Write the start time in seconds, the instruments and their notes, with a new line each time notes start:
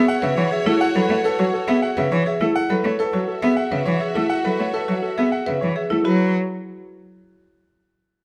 Already playing: string section F#4 C#5, marimba G#4, grand piano E5
0.08 grand piano F#5
0.22 cello C#3, marimba B4, grand piano E5
0.37 cello E3, grand piano C#5
0.51 marimba G#4, grand piano E5
0.66 cello A3, marimba E4, grand piano A4
0.81 grand piano F#5
0.95 cello F#3, marimba A4, grand piano B4
1.09 cello A3, grand piano C#5
1.24 grand piano A4, marimba B4
1.39 cello F#3, marimba F#4, grand piano C#5
1.53 grand piano A4
1.68 cello B3, marimba G#4, grand piano E5
1.82 grand piano F#5
1.97 cello C#3, marimba B4, grand piano E5
2.12 cello E3, grand piano C#5
2.26 marimba G#4, grand piano E5
2.40 cello A3, marimba E4, grand piano A4
2.56 string section F#4 E5, grand piano F#5
2.70 cello F#3, marimba A4, grand piano B4
2.84 cello A3, grand piano C#5
2.99 grand piano A4, marimba B4
3.13 cello F#3, marimba F#4, grand piano C#5
3.28 grand piano A4
3.42 cello B3, marimba G#4, grand piano E5
3.57 grand piano F#5
3.71 cello C#3, marimba B4, grand piano E5
3.86 cello E3, grand piano C#5
4.00 marimba G#4, grand piano E5
4.14 cello A3, marimba E4, grand piano A4
4.30 grand piano F#5
4.45 cello F#3, marimba A4, grand piano B4
4.59 cello A3, grand piano C#5
4.74 grand piano A4, marimba B4
4.88 cello F#3, marimba F#4, grand piano C#5
5.02 grand piano A4
5.17 cello B3, marimba G#4, grand piano E5
5.32 grand piano F#5
5.46 cello C#3, marimba B4, grand piano E5
5.61 cello E3, grand piano C#5
5.76 marimba G#4, grand piano E5
5.90 cello A3, marimba E4, grand piano A4
6.05 cello F#3, marimba F#4, grand piano B4